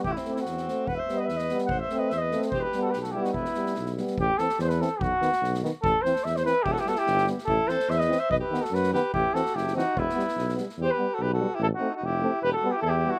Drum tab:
SD |-oooooo-|--o-oooo|--o-o-oo|--o-oo-o|
BD |o-------|o-------|o-------|o-------|

SD |-ooooooo|--ooooo-|--ooooo-|--ooooo-|
BD |o-------|o-------|o-------|o-------|

SD |-ooooooo|--ooooo-|--ooooo-|--ooooo-|
BD |o-------|o-------|o-------|o-------|

SD |-ooooooo|--------|--------|--------|
BD |o-------|--------|--------|--------|